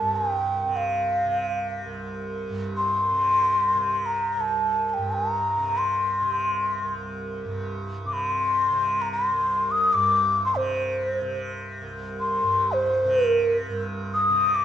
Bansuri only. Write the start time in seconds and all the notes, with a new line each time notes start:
Already playing: A5
0.16 G#5
0.31 G5
0.76 F5
2.77 C6
4.06 A#5
4.40 A5
4.89 A5
4.94 G5
5.14 A#5
5.78 C6
8.06 D6
8.13 C6
9.02 A#5
9.12 C6
9.71 D#6
9.93 D6
10.45 C6
10.57 C5
12.20 C6
12.72 C5
13.26 A#4
14.14 D#6
14.55 D6